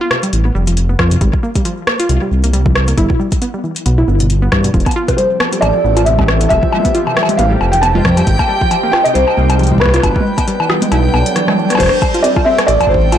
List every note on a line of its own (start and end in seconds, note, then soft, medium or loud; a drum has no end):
0.01 0.08 F4 loud
0.11 0.20 C3 medium
0.11 cross-stick loud
0.23 0.30 G3 medium
0.23 closed hi-hat medium
0.33 0.50 A1 medium
0.33 closed hi-hat medium
0.45 0.49 B3 medium
0.55 0.95 F1 medium
0.55 0.64 G3 medium
0.67 0.74 F3 medium
0.67 closed hi-hat medium
0.77 closed hi-hat medium
0.89 0.96 B3 medium
0.99 1.17 F2 medium
0.99 1.08 F4 loud
0.99 kick loud
0.99 cross-stick loud
1.11 1.18 C3 medium
1.11 closed hi-hat medium
1.21 1.31 G#1 medium
1.21 1.30 G3 medium
1.21 kick loud
1.21 closed hi-hat medium
1.33 kick medium
1.43 1.48 A#3 medium
1.55 1.62 G3 medium
1.55 kick medium
1.55 closed hi-hat medium
1.65 1.74 F3 medium
1.65 closed hi-hat soft
1.87 1.96 A#3 medium
1.87 cross-stick loud
2.00 2.07 F4 loud
2.00 closed hi-hat medium
2.09 2.19 C2 loud
2.09 2.18 C3 medium
2.09 closed hi-hat medium
2.22 2.29 G3 medium
2.31 2.94 C2 loud
2.44 2.48 A#3 medium
2.44 closed hi-hat medium
2.53 2.62 G3 medium
2.53 closed hi-hat medium
2.66 2.73 F3 medium
2.66 kick loud
2.75 cross-stick loud
2.88 2.95 A#3 medium
2.88 closed hi-hat medium
2.98 3.07 G1 loud
2.98 3.06 E4 loud
2.98 kick loud
2.98 closed hi-hat medium
3.10 3.17 B2 medium
3.10 kick medium
3.20 3.28 G3 medium
3.32 kick medium
3.32 closed hi-hat medium
3.42 3.47 B3 medium
3.42 closed hi-hat soft
3.54 3.61 G3 medium
3.64 3.73 E3 medium
3.76 closed hi-hat medium
3.86 4.03 B1 medium
3.86 3.95 B3 medium
3.86 closed hi-hat medium
3.98 4.05 E4 loud
4.08 4.48 G1 loud
4.08 4.13 B3 medium
4.20 4.27 B2 medium
4.20 closed hi-hat medium
4.30 closed hi-hat medium
4.42 4.49 B3 medium
4.52 4.69 G2 medium
4.52 4.64 E3 medium
4.52 kick loud
4.52 cross-stick loud
4.64 4.68 B2 medium
4.64 closed hi-hat medium
4.74 4.83 F1 medium
4.74 8.27 F3 medium
4.74 4.86 F3 medium
4.74 11.79 G5 medium
4.74 kick loud
4.74 closed hi-hat soft
4.80 closed hi-hat soft
4.86 4.93 B3 medium
4.86 10.03 C4 medium
4.86 kick medium
4.86 closed hi-hat soft
4.86 high bongo soft
4.91 closed hi-hat soft
4.96 5.05 F4 loud
5.03 10.03 G4 medium
5.03 8.27 A4 medium
5.08 5.15 C3 medium
5.08 kick medium
5.08 closed hi-hat medium
5.08 high bongo medium
5.17 5.27 G3 medium
5.17 5.63 C5 medium
5.17 closed hi-hat soft
5.32 8.27 E3 medium
5.40 5.45 B3 medium
5.40 cross-stick loud
5.40 high bongo medium
5.53 5.59 G3 medium
5.53 closed hi-hat medium
5.61 5.72 A1 loud
5.61 5.71 F3 medium
5.61 6.07 D5 medium
5.61 closed hi-hat soft
5.61 high bongo medium
5.75 5.84 F3 medium
5.84 6.47 A1 medium
5.84 5.93 B3 medium
5.97 6.04 F4 loud
5.97 closed hi-hat medium
5.97 high bongo soft
6.05 6.15 C3 medium
6.05 6.48 E5 medium
6.05 closed hi-hat medium
6.19 6.26 G3 medium
6.19 kick loud
6.19 high bongo medium
6.19 low conga medium
6.28 cross-stick loud
6.41 6.45 B3 medium
6.41 closed hi-hat medium
6.49 6.60 F1 loud
6.49 6.59 G3 medium
6.49 7.41 E5 loud
6.49 kick medium
6.49 closed hi-hat medium
6.49 high bongo medium
6.63 6.70 F3 medium
6.63 kick medium
6.72 6.84 F3 medium
6.72 high bongo medium
6.72 low conga soft
6.77 low conga medium
6.80 low conga medium
6.85 6.92 B3 medium
6.85 kick medium
6.85 closed hi-hat medium
6.95 7.03 F4 loud
6.95 closed hi-hat soft
7.07 7.14 C3 medium
7.07 high bongo medium
7.17 7.25 G3 medium
7.17 cross-stick loud
7.23 high bongo medium
7.29 closed hi-hat medium
7.29 low conga medium
7.37 7.56 A1 medium
7.37 7.44 B3 medium
7.37 7.73 F5 loud
7.37 closed hi-hat soft
7.51 7.58 G3 medium
7.61 8.01 F1 loud
7.61 7.70 F3 medium
7.61 high bongo medium
7.72 7.82 F3 medium
7.72 7.82 G5 medium
7.72 closed hi-hat medium
7.81 7.92 B3 medium
7.81 8.14 A5 loud
7.81 closed hi-hat medium
7.81 high bongo medium
7.95 8.02 F4 loud
7.95 low conga medium
8.05 8.22 F2 medium
8.05 8.14 C3 medium
8.05 kick loud
8.05 cross-stick loud
8.17 8.24 G3 medium
8.17 closed hi-hat medium
8.17 high bongo medium
8.27 8.36 G#1 loud
8.27 10.03 G#3 medium
8.27 kick medium
8.27 closed hi-hat medium
8.39 8.43 A#3 medium
8.39 kick medium
8.39 high bongo medium
8.49 8.58 G3 medium
8.59 8.68 F3 medium
8.59 10.03 D#4 medium
8.59 kick medium
8.71 8.83 F3 medium
8.71 closed hi-hat soft
8.71 high bongo medium
8.83 8.90 A#3 medium
8.92 9.02 F4 loud
8.92 9.04 G5 loud
8.92 cross-stick loud
8.92 high bongo medium
9.04 9.12 C3 medium
9.04 9.15 D#5 medium
9.04 closed hi-hat medium
9.14 9.25 C2 loud
9.14 9.24 G3 medium
9.14 9.83 C5 loud
9.14 closed hi-hat medium
9.28 high bongo medium
9.37 10.00 C2 loud
9.37 9.43 A#3 medium
9.50 9.57 G3 medium
9.50 closed hi-hat medium
9.50 high bongo medium
9.59 9.68 F3 medium
9.59 closed hi-hat soft
9.63 closed hi-hat soft
9.67 closed hi-hat soft
9.72 9.81 F3 medium
9.72 kick soft
9.72 low conga soft
9.78 9.90 A#3 medium
9.78 11.53 B4 loud
9.78 kick medium
9.78 cross-stick loud
9.78 high bongo soft
9.78 low conga medium
9.85 kick medium
9.85 cross-stick medium
9.85 low conga medium
9.89 cross-stick medium
9.94 10.01 F4 loud
9.94 cross-stick medium
9.94 closed hi-hat medium
9.96 cross-stick soft
10.00 10.13 G1 loud
10.00 10.12 B2 medium
10.00 13.18 G3 medium
10.00 kick medium
10.00 cross-stick soft
10.00 closed hi-hat medium
10.00 high bongo medium
10.16 10.23 G3 medium
10.16 kick medium
10.21 low conga medium
10.33 11.80 B3 medium
10.38 10.42 B3 medium
10.38 kick medium
10.38 closed hi-hat medium
10.38 high bongo medium
10.48 10.56 G3 medium
10.48 closed hi-hat medium
10.60 10.67 E3 medium
10.60 high bongo medium
10.68 10.81 E3 medium
10.68 13.18 D4 medium
10.68 cross-stick loud
10.77 13.18 A4 medium
10.82 10.89 B3 medium
10.82 closed hi-hat medium
10.82 low conga loud
10.92 11.09 B1 loud
10.92 11.01 E4 loud
10.92 closed hi-hat medium
10.92 high bongo medium
11.04 11.11 B2 medium
11.14 11.23 B1 medium
11.14 11.25 B3 medium
11.14 high bongo medium
11.26 closed hi-hat medium
11.36 11.47 E3 medium
11.36 cross-stick medium
11.36 closed hi-hat medium
11.48 11.57 E3 loud
11.48 cross-stick medium
11.48 high bongo medium
11.48 low conga medium
11.58 11.67 E3 medium
11.70 11.74 B3 loud
11.70 cross-stick soft
11.70 closed hi-hat medium
11.73 cross-stick soft
11.75 cross-stick soft
11.75 high bongo medium
11.78 11.89 F1 loud
11.78 11.85 F3 medium
11.78 12.25 C5 loud
11.78 13.18 G5 medium
11.78 kick loud
11.78 cross-stick medium
11.80 cross-stick medium
11.80 closed hi-hat medium
11.80 crash loud
11.80 high bongo medium
11.83 cross-stick medium
11.86 cross-stick medium
11.89 cross-stick medium
11.95 13.18 C4 medium
12.02 kick loud
12.02 high bongo medium
12.02 cabasa medium
12.14 12.24 F4 medium
12.14 closed hi-hat medium
12.23 12.33 C4 medium
12.23 12.28 D5 loud
12.23 closed hi-hat medium
12.36 12.43 F4 medium
12.36 kick loud
12.36 high bongo medium
12.45 12.58 C4 loud
12.45 12.68 E5 loud
12.58 12.65 G3 medium
12.58 cross-stick loud
12.58 closed hi-hat medium
12.58 high bongo medium
12.67 12.78 A1 loud
12.67 12.77 E3 medium
12.67 13.18 E4 medium
12.67 12.90 D5 loud
12.67 closed hi-hat medium
12.80 12.85 F3 medium
12.80 kick soft
12.80 closed hi-hat soft
12.80 high bongo medium
12.87 13.18 A1 loud
12.87 13.18 C5 loud
12.87 kick medium
12.94 kick medium
13.12 13.18 F4 medium
13.12 closed hi-hat medium
13.12 high bongo medium